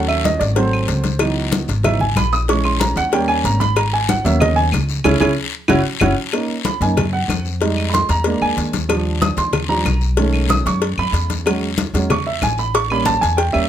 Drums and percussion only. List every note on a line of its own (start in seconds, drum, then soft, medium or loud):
0.09 high conga soft
0.09 claves medium
0.25 cowbell medium
0.25 high conga loud
0.25 short guiro medium
0.41 cowbell medium
0.41 high conga soft
0.41 short guiro medium
0.56 cowbell medium
0.56 high conga soft
0.56 long guiro medium
0.73 high conga soft
0.73 claves medium
0.88 cowbell medium
0.88 high conga soft
0.88 short guiro medium
1.04 cowbell medium
1.04 high conga medium
1.04 short guiro medium
1.19 cowbell loud
1.19 high conga soft
1.19 long guiro medium
1.19 claves medium
1.37 high conga soft
1.52 cowbell medium
1.52 high conga loud
1.52 short guiro medium
1.68 cowbell medium
1.68 high conga soft
1.68 short guiro medium
1.83 cowbell loud
1.83 high conga soft
1.83 low conga medium
1.83 long guiro medium
1.83 claves medium
2.00 high conga soft
2.00 low conga medium
2.16 cowbell medium
2.16 high conga medium
2.16 short guiro medium
2.16 claves medium
2.33 high conga soft
2.33 short guiro medium
2.48 cowbell loud
2.48 high conga soft
2.48 long guiro medium
2.64 high conga soft
2.64 claves medium
2.80 cowbell medium
2.80 high conga loud
2.80 short guiro medium
2.96 cowbell medium
2.96 high conga soft
2.96 short guiro medium
3.12 cowbell loud
3.12 high conga soft
3.12 long guiro medium
3.28 high conga soft
3.28 claves medium
3.44 cowbell medium
3.44 high conga soft
3.44 short guiro medium
3.60 cowbell medium
3.60 high conga medium
3.60 short guiro medium
3.76 cowbell loud
3.76 high conga soft
3.76 long guiro medium
3.76 claves medium
3.93 high conga soft
4.09 cowbell medium
4.09 high conga loud
4.09 short guiro medium
4.25 cowbell medium
4.25 high conga soft
4.25 short guiro medium
4.40 cowbell medium
4.40 high conga soft
4.40 low conga loud
4.40 long guiro medium
4.40 claves medium
4.57 high conga soft
4.72 cowbell medium
4.72 high conga medium
4.72 short guiro medium
4.72 claves medium
4.89 high conga soft
4.89 short guiro medium
5.04 cowbell loud
5.04 high conga loud
5.04 long guiro loud
5.04 claves loud
5.21 cowbell medium
5.21 high conga medium
5.21 long guiro loud
5.21 claves medium
5.68 cowbell medium
5.68 high conga loud
5.68 long guiro loud
5.68 claves loud
6.00 cowbell loud
6.00 high conga loud
6.00 long guiro loud
6.00 claves loud
6.32 cowbell loud
6.32 high conga soft
6.32 long guiro medium
6.32 claves medium
6.49 high conga soft
6.65 cowbell medium
6.65 high conga loud
6.65 short guiro medium
6.81 cowbell medium
6.81 high conga soft
6.81 short guiro medium
6.97 cowbell loud
6.97 high conga soft
6.97 low conga medium
6.97 long guiro medium
6.97 claves medium
7.13 high conga soft
7.29 cowbell medium
7.29 high conga medium
7.29 short guiro medium
7.29 claves medium
7.45 high conga soft
7.45 short guiro medium
7.61 cowbell loud
7.61 high conga soft
7.61 long guiro medium
7.77 high conga soft
7.77 claves medium
7.93 cowbell medium
7.93 high conga loud
7.93 short guiro medium
8.09 cowbell medium
8.09 high conga soft
8.09 short guiro medium
8.24 cowbell medium
8.24 high conga soft
8.24 long guiro medium
8.42 high conga soft
8.42 claves medium
8.58 cowbell medium
8.58 high conga soft
8.58 short guiro medium
8.73 cowbell medium
8.73 high conga medium
8.73 short guiro medium
8.89 cowbell loud
8.89 high conga soft
8.89 long guiro medium
8.89 claves medium
9.06 high conga soft
9.22 cowbell medium
9.22 high conga loud
9.22 short guiro medium
9.37 cowbell medium
9.37 high conga soft
9.37 short guiro medium
9.53 cowbell medium
9.53 high conga soft
9.53 low conga medium
9.53 long guiro medium
9.53 claves medium
9.70 high conga soft
9.85 cowbell medium
9.85 high conga medium
9.85 short guiro medium
9.85 claves medium
10.01 high conga soft
10.01 short guiro medium
10.17 cowbell loud
10.17 high conga soft
10.17 long guiro medium
10.33 high conga soft
10.33 claves medium
10.49 cowbell medium
10.49 high conga loud
10.49 short guiro medium
10.66 cowbell medium
10.66 high conga soft
10.66 short guiro medium
10.82 cowbell loud
10.82 high conga soft
10.82 long guiro medium
10.98 high conga soft
10.98 claves medium
11.14 cowbell medium
11.14 high conga soft
11.14 short guiro medium
11.30 cowbell medium
11.30 high conga medium
11.30 short guiro medium
11.46 cowbell loud
11.46 high conga soft
11.46 long guiro medium
11.46 claves medium
11.62 high conga soft
11.78 cowbell medium
11.78 high conga loud
11.78 short guiro medium
11.94 cowbell medium
11.94 high conga soft
11.94 short guiro medium
12.10 cowbell loud
12.10 high conga soft
12.10 low conga medium
12.10 long guiro medium
12.10 claves medium
12.26 high conga soft
12.42 cowbell medium
12.42 high conga medium
12.42 short guiro medium
12.42 claves medium
12.58 high conga soft
12.58 short guiro medium
12.74 cowbell loud
12.74 high conga soft
12.74 long guiro medium
12.90 high conga soft
12.90 claves medium
13.06 cowbell medium
13.06 high conga loud
13.06 short guiro medium
13.22 cowbell medium
13.22 high conga soft
13.22 short guiro medium
13.38 cowbell loud
13.38 high conga soft
13.38 long guiro medium
13.54 high conga soft
13.54 claves medium